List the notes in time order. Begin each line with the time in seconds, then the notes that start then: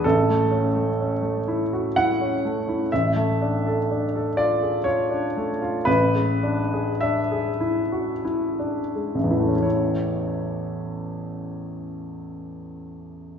0.04 A1 A4
0.30 A3
0.51 C#4
0.75 A3
1.00 C#4
1.22 A3
1.48 E4
1.73 F#4
1.96 E4 F#5
2.21 C#4
2.45 A3
2.69 E4
2.92 A1 E5
3.16 A3
3.41 D4
3.67 A4
3.91 D4
4.16 A4
4.37 F4 D5
4.62 G#4
4.84 F4 C#5
5.10 D4
5.37 A3
5.62 F4
5.85 A1 B4
6.15 G#3
6.43 D4
6.73 G#4
7.01 D4 E5
7.31 G#4
7.61 E4
7.92 F#4
8.25 E4
8.59 D4
8.95 G#3
9.15 A1
9.23 E2
9.30 E3 E4
9.40 A3
9.48 C#4
9.56 E4
9.63 C#5